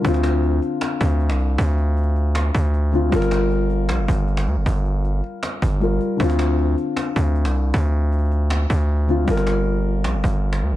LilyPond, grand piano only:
\new Staff \with { instrumentName = "Grand piano" } { \time 4/4 \key d \minor \tempo 4 = 156 <d c' f'>1~ | <d c' f'>2.~ <d c' f'>8 <d c' f'>8 | <g f' bes'>1~ | <g f' bes'>2. <g f' bes'>4 |
<d c' f'>1~ | <d c' f'>2.~ <d c' f'>8 <d c' f'>8 | <g f' bes'>1 | }